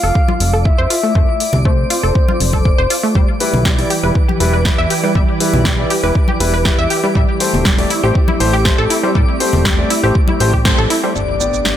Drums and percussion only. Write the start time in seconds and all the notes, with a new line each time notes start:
0.15 kick
0.28 high conga
0.40 open hi-hat
0.65 kick
0.90 open hi-hat
1.15 kick
1.40 open hi-hat
1.53 low conga
1.65 kick
1.90 open hi-hat
2.15 kick
2.28 high conga
2.40 open hi-hat
2.53 kick, high conga
2.65 kick
2.90 open hi-hat
3.15 kick
3.40 open hi-hat
3.54 low conga
3.65 kick, snare
3.79 open hi-hat
3.90 open hi-hat
4.15 kick
4.29 high conga
4.40 open hi-hat
4.65 kick, snare
4.90 open hi-hat
5.15 kick
5.40 open hi-hat
5.53 low conga
5.65 kick, snare
5.90 open hi-hat
6.15 kick
6.28 high conga
6.40 open hi-hat
6.65 kick, snare
6.90 open hi-hat
7.15 kick
7.40 open hi-hat
7.54 low conga
7.65 kick, snare
7.78 open hi-hat
7.90 open hi-hat
8.15 kick
8.28 high conga
8.40 open hi-hat
8.65 kick, snare
8.90 open hi-hat
9.15 kick
9.40 open hi-hat
9.53 low conga
9.65 kick, snare
9.90 open hi-hat
10.15 kick
10.28 high conga
10.40 open hi-hat
10.53 kick
10.65 kick, snare
10.90 open hi-hat
11.16 shaker
11.41 shaker
11.54 shaker
11.65 snare, shaker